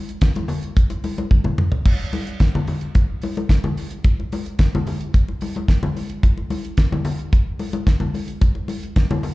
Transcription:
0.09 closed hi-hat
0.21 kick, snare, closed hi-hat, muted conga
0.35 closed hi-hat, muted conga, high conga
0.48 open hi-hat, low conga
0.63 closed hi-hat
0.77 kick, closed hi-hat
0.90 closed hi-hat, muted conga
1.04 open hi-hat, high conga
1.18 closed hi-hat, high conga
1.31 kick, high tom
1.44 mid tom, high conga, low conga
1.58 mid tom, high conga
1.72 floor tom
1.85 kick, crash, muted conga
2.13 open hi-hat, high conga
2.27 closed hi-hat
2.40 kick, snare, closed hi-hat, muted conga
2.55 high conga, low conga
2.67 open hi-hat, low conga
2.81 closed hi-hat
2.95 kick, closed hi-hat, muted conga
3.22 open hi-hat, high conga
3.35 closed hi-hat, high conga
3.49 kick, snare, closed hi-hat
3.64 high conga, low conga
3.77 open hi-hat, high conga
3.90 closed hi-hat
4.04 kick, closed hi-hat, muted conga
4.20 muted conga
4.32 open hi-hat, high conga
4.46 closed hi-hat
4.59 kick, snare, closed hi-hat
4.75 muted conga, high conga, low conga
4.87 open hi-hat, low conga
5.01 closed hi-hat
5.14 kick, closed hi-hat
5.28 muted conga
5.41 open hi-hat, high conga
5.55 closed hi-hat, high conga
5.68 kick, snare, closed hi-hat
5.83 muted conga, high conga, low conga
5.96 open hi-hat, high conga
6.10 closed hi-hat
6.23 kick, closed hi-hat, muted conga
6.38 muted conga
6.50 open hi-hat, high conga
6.65 closed hi-hat
6.77 kick, snare, closed hi-hat, muted conga
6.92 muted conga, high conga, low conga
7.05 open hi-hat, low conga
7.19 closed hi-hat
7.33 kick, closed hi-hat
7.59 open hi-hat, high conga
7.73 closed hi-hat, high conga
7.87 kick, snare, closed hi-hat
8.00 high conga, low conga
8.14 open hi-hat, high conga
8.28 closed hi-hat
8.41 kick, closed hi-hat, muted conga
8.55 muted conga
8.68 open hi-hat, high conga
8.83 closed hi-hat
8.96 kick, snare, closed hi-hat, muted conga
9.11 muted conga, high conga, low conga
9.23 open hi-hat, low conga

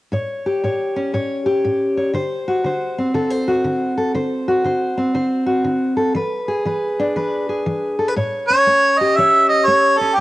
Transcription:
0.12 A2 C#5
0.46 G4
0.64 A2 C#5
0.96 C#4
1.13 A2 C#5
1.46 G4
1.65 A2
1.97 C#5
2.13 D3 C5
2.48 F#4
2.64 D3 C5
2.98 C4
3.14 D3 A4
3.30 C5
3.48 F#4
3.64 D3
3.97 A4
4.14 D3 C5
4.48 F#4
4.64 D3 C5
4.98 C4
5.14 D3 C5
5.46 F#4
5.64 D3
5.97 A4
6.15 E3 B4
6.48 G#4
6.65 E3 B4
7.00 D4
7.16 E3 B4
7.49 G#4
7.66 E3
7.99 A4
8.08 B4
8.16 A2 C#5
8.48 C#4 C#5
8.67 A3
8.98 G4 D#5
9.16 E3 C#5 E5
9.49 D#5
9.65 A3 C#5
9.97 C#4 A4
10.15 G4

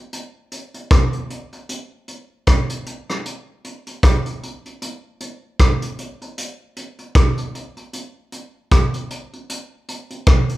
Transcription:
0.13 closed hi-hat
0.52 closed hi-hat
0.74 closed hi-hat
0.91 kick, cross-stick, closed hi-hat
1.13 closed hi-hat
1.30 closed hi-hat
1.52 closed hi-hat
1.69 closed hi-hat
2.08 closed hi-hat
2.47 kick, cross-stick, closed hi-hat
2.69 closed hi-hat
2.86 closed hi-hat
3.09 cross-stick, closed hi-hat
3.25 closed hi-hat
3.64 closed hi-hat
3.87 closed hi-hat
4.03 kick, cross-stick, closed hi-hat
4.26 closed hi-hat
4.43 closed hi-hat
4.65 closed hi-hat
4.82 closed hi-hat
5.20 closed hi-hat
5.59 kick, cross-stick, closed hi-hat
5.82 closed hi-hat
5.99 closed hi-hat
6.21 closed hi-hat
6.38 closed hi-hat
6.76 closed hi-hat
6.98 closed hi-hat
7.15 kick, cross-stick, closed hi-hat
7.38 closed hi-hat
7.55 closed hi-hat
7.77 closed hi-hat
7.93 closed hi-hat
8.32 closed hi-hat
8.71 kick, cross-stick, closed hi-hat
8.94 closed hi-hat
9.10 closed hi-hat
9.33 closed hi-hat
9.49 closed hi-hat
9.88 closed hi-hat
10.10 closed hi-hat
10.26 kick, cross-stick, closed hi-hat
10.49 closed hi-hat

